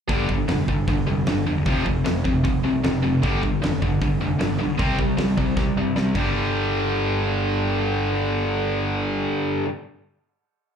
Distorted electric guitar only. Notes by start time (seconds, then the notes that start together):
0.08 G2 D3 G3
0.29 G2 D3
0.48 G2 D3
0.69 G2 D3
0.88 G2 D3
1.07 G2 D3
1.27 G2 D3
1.46 G2 D3
1.66 F2 C3 F3
1.85 F2 C3
2.04 F2 C3
2.25 F2 C3
2.44 F2 C3
2.64 F2 C3
2.84 F2 C3
3.03 F2 C3
3.23 G2 D3 G3
3.43 G2 D3
3.62 G2 D3
3.82 G2 D3
4.02 G2 D3
4.21 G2 D3
4.39 G2 D3
4.59 G2 D3
4.78 C3 G3 C4
4.98 C3 G3
5.17 C3 G3
5.37 C3 G3
5.56 C3 G3
5.77 C3 G3
5.96 C3 G3
6.15 G2 D3
6.19 G3